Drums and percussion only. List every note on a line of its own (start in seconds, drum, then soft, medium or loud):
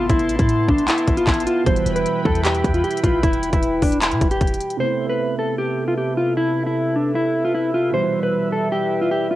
0.09 kick loud
0.09 closed hi-hat medium
0.19 closed hi-hat medium
0.29 closed hi-hat medium
0.39 kick loud
0.39 closed hi-hat medium
0.49 closed hi-hat medium
0.68 kick medium
0.78 closed hi-hat medium
0.88 clap loud
0.88 closed hi-hat medium
0.98 closed hi-hat medium
1.07 kick loud
1.07 closed hi-hat medium
1.17 closed hi-hat medium
1.27 kick loud
1.27 clap loud
1.27 closed hi-hat soft
1.34 closed hi-hat medium
1.40 closed hi-hat medium
1.47 closed hi-hat medium
1.66 kick loud
1.66 closed hi-hat medium
1.76 closed hi-hat medium
1.86 closed hi-hat medium
1.96 closed hi-hat medium
2.06 closed hi-hat medium
2.25 kick medium
2.35 closed hi-hat medium
2.45 clap loud
2.45 closed hi-hat medium
2.55 closed hi-hat medium
2.64 kick loud
2.64 closed hi-hat medium
2.74 closed hi-hat medium
2.84 closed hi-hat soft
2.91 closed hi-hat medium
2.97 closed hi-hat medium
3.04 kick medium
3.04 closed hi-hat medium
3.23 kick loud
3.23 closed hi-hat medium
3.33 closed hi-hat medium
3.43 closed hi-hat medium
3.53 kick loud
3.53 closed hi-hat medium
3.63 closed hi-hat medium
3.82 kick medium
3.82 open hi-hat medium
3.92 closed hi-hat medium
4.02 clap loud
4.02 closed hi-hat medium
4.11 closed hi-hat medium
4.21 kick loud
4.21 closed hi-hat medium
4.31 closed hi-hat medium
4.41 kick loud
4.41 closed hi-hat medium
4.47 closed hi-hat medium
4.54 closed hi-hat medium
4.60 closed hi-hat medium
4.70 closed hi-hat medium